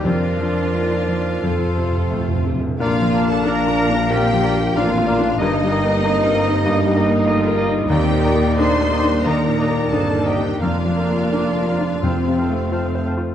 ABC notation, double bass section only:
X:1
M:4/4
L:1/8
Q:1/4=89
K:Bb
V:1 name="Double bass section" clef=bass
F,,4 F,,3 z | B,,,6 A,,,2 | G,,,8 | E,,6 G,,2 |
F,,4 F,,3 z |]